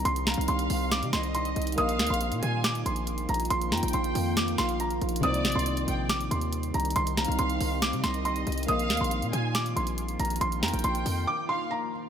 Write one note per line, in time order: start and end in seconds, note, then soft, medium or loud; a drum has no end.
0.00 1.73 C3 medium
0.00 1.74 D#3 medium
0.00 1.74 G3 medium
0.00 1.73 C4 medium
0.00 1.74 C4 medium
0.00 1.74 D#4 medium
0.00 1.75 C5 medium
0.05 0.36 C2 loud
0.05 0.25 C6 loud
0.05 closed hi-hat medium
0.16 closed hi-hat medium
0.27 1.09 F5 medium
0.27 0.46 A#5 medium
0.27 snare medium
0.27 closed hi-hat medium
0.34 0.48 C2 loud
0.34 closed hi-hat medium
0.41 closed hi-hat medium
0.48 0.69 C2 loud
0.48 0.89 C6 medium
0.48 closed hi-hat medium
0.59 closed hi-hat medium
0.70 1.04 C2 loud
0.70 open hi-hat medium
0.91 1.11 D6 medium
0.91 snare loud
0.91 closed hi-hat medium
1.02 1.13 C3 loud
1.02 closed hi-hat medium
1.13 1.55 C2 loud
1.13 1.74 D#5 medium
1.13 1.33 C6 medium
1.13 snare loud
1.13 closed hi-hat medium
1.23 closed hi-hat medium
1.35 1.54 C6 medium
1.35 closed hi-hat medium
1.45 closed hi-hat medium
1.56 1.77 C2 loud
1.56 closed hi-hat medium
1.62 closed hi-hat medium
1.67 closed hi-hat medium
1.72 5.18 A#3 medium
1.72 closed hi-hat medium
1.77 2.01 A#1 loud
1.77 5.20 D#3 medium
1.77 5.20 F3 medium
1.77 5.20 A#3 medium
1.77 5.20 F4 medium
1.77 5.19 A#4 medium
1.77 5.20 D#5 medium
1.77 2.39 F5 loud
1.77 5.21 F5 medium
1.77 2.08 D#6 loud
1.77 closed hi-hat medium
1.89 closed hi-hat medium
1.99 2.10 D2 loud
1.99 snare medium
1.99 closed hi-hat medium
2.07 2.33 A#1 loud
2.07 2.61 C6 medium
2.07 closed hi-hat medium
2.14 closed hi-hat medium
2.21 closed hi-hat medium
2.32 2.42 A#2 loud
2.32 closed hi-hat medium
2.43 2.84 A#2 loud
2.43 2.63 G#5 medium
2.43 closed hi-hat medium
2.64 2.84 D6 medium
2.64 snare loud
2.64 closed hi-hat medium
2.75 closed hi-hat medium
2.86 3.27 A#1 loud
2.86 3.26 C6 medium
2.86 closed hi-hat medium
2.96 closed hi-hat medium
3.07 closed hi-hat medium
3.18 closed hi-hat medium
3.29 3.50 A#1 loud
3.29 3.49 A#5 medium
3.29 closed hi-hat medium
3.34 closed hi-hat medium
3.40 closed hi-hat medium
3.45 closed hi-hat medium
3.50 3.74 A#1 loud
3.50 3.70 C6 loud
3.50 closed hi-hat medium
3.62 closed hi-hat medium
3.72 3.82 F2 loud
3.72 4.54 G5 medium
3.72 3.92 A#5 medium
3.72 snare medium
3.72 closed hi-hat medium
3.77 closed hi-hat medium
3.83 3.93 A#1 loud
3.83 closed hi-hat medium
3.88 closed hi-hat medium
3.93 4.14 A#1 loud
3.93 4.34 C6 medium
3.93 closed hi-hat medium
4.04 closed hi-hat medium
4.15 4.57 F2 loud
4.15 open hi-hat medium
4.37 4.56 D6 medium
4.37 snare loud
4.37 closed hi-hat medium
4.48 closed hi-hat medium
4.58 5.00 A#1 loud
4.58 4.79 F5 medium
4.58 4.78 C6 loud
4.58 snare loud
4.58 closed hi-hat medium
4.69 closed hi-hat medium
4.80 5.00 A#5 medium
4.80 closed hi-hat medium
4.91 closed hi-hat medium
5.01 5.22 A#1 loud
5.01 closed hi-hat soft
5.09 closed hi-hat medium
5.16 closed hi-hat medium
5.21 5.46 C2 loud
5.21 8.63 C3 medium
5.21 8.65 D#3 medium
5.21 8.65 G3 medium
5.21 8.64 C4 medium
5.21 8.65 C4 medium
5.21 8.65 D#4 medium
5.21 5.84 D5 loud
5.21 5.54 D#6 loud
5.21 closed hi-hat medium
5.26 8.66 C5 medium
5.34 closed hi-hat medium
5.45 5.55 A#1 loud
5.45 snare medium
5.45 closed hi-hat medium
5.52 5.87 C2 loud
5.52 6.06 C6 medium
5.52 closed hi-hat medium
5.59 closed hi-hat medium
5.66 closed hi-hat medium
5.77 closed hi-hat medium
5.88 6.29 A#1 loud
5.88 6.09 G5 medium
5.88 closed hi-hat medium
6.09 6.29 D6 medium
6.09 snare loud
6.09 closed hi-hat medium
6.21 closed hi-hat medium
6.31 6.73 D#2 loud
6.31 6.72 C6 medium
6.31 closed hi-hat medium
6.41 closed hi-hat medium
6.53 closed hi-hat medium
6.63 closed hi-hat medium
6.74 6.95 C2 loud
6.74 6.94 A#5 medium
6.74 closed hi-hat medium
6.80 closed hi-hat medium
6.85 closed hi-hat medium
6.90 closed hi-hat medium
6.96 7.27 C2 loud
6.96 7.15 C6 loud
6.96 closed hi-hat medium
7.07 closed hi-hat medium
7.17 8.00 F5 medium
7.17 7.37 A#5 medium
7.17 snare medium
7.17 closed hi-hat medium
7.25 7.39 C2 loud
7.25 closed hi-hat medium
7.32 closed hi-hat medium
7.39 7.60 C2 loud
7.39 7.79 C6 medium
7.39 closed hi-hat medium
7.50 closed hi-hat medium
7.61 7.94 C2 loud
7.61 open hi-hat medium
7.82 8.02 D6 medium
7.82 snare loud
7.82 closed hi-hat medium
7.93 8.03 C3 loud
7.93 closed hi-hat medium
8.04 8.45 C2 loud
8.04 8.65 D#5 medium
8.04 8.23 C6 medium
8.04 snare loud
8.04 closed hi-hat medium
8.14 closed hi-hat medium
8.25 8.45 C6 medium
8.25 closed hi-hat medium
8.36 closed hi-hat medium
8.47 8.68 C2 loud
8.47 closed hi-hat medium
8.52 closed hi-hat medium
8.58 closed hi-hat medium
8.63 12.09 A#3 medium
8.63 closed hi-hat medium
8.68 8.92 A#1 loud
8.68 12.09 D#3 medium
8.68 12.09 F3 medium
8.68 12.09 A#3 medium
8.68 12.09 F4 medium
8.68 12.09 A#4 medium
8.68 12.09 D#5 medium
8.68 9.29 F5 loud
8.68 12.09 F5 medium
8.68 8.99 D#6 loud
8.68 closed hi-hat medium
8.79 closed hi-hat medium
8.90 9.00 D2 loud
8.90 snare medium
8.90 closed hi-hat medium
8.97 9.24 A#1 loud
8.97 9.52 C6 medium
8.97 closed hi-hat medium
9.04 closed hi-hat medium
9.11 closed hi-hat medium
9.22 9.33 A#2 loud
9.22 closed hi-hat medium
9.33 9.75 A#2 loud
9.33 9.54 G#5 medium
9.33 closed hi-hat medium
9.55 9.74 D6 medium
9.55 snare loud
9.55 closed hi-hat medium
9.66 closed hi-hat medium
9.76 10.18 A#1 loud
9.76 10.17 C6 medium
9.76 closed hi-hat medium
9.87 closed hi-hat medium
9.98 closed hi-hat medium
10.09 closed hi-hat medium
10.20 10.40 A#1 loud
10.20 10.39 A#5 medium
10.20 closed hi-hat medium
10.25 closed hi-hat medium
10.30 closed hi-hat medium
10.36 closed hi-hat medium
10.41 10.64 A#1 loud
10.41 10.61 C6 loud
10.41 closed hi-hat medium
10.52 closed hi-hat medium
10.62 10.73 F2 loud
10.62 11.45 G5 medium
10.62 10.82 A#5 medium
10.62 snare medium
10.62 closed hi-hat medium
10.68 closed hi-hat medium
10.73 10.84 A#1 loud
10.73 closed hi-hat medium
10.79 closed hi-hat medium
10.84 11.05 A#1 loud
10.84 11.25 C6 medium
10.84 closed hi-hat medium
10.95 closed hi-hat medium
11.06 11.27 F2 loud
11.06 open hi-hat medium
11.27 11.47 D6 medium
11.49 11.69 F5 medium
11.49 11.69 C6 medium
11.71 11.90 A#5 medium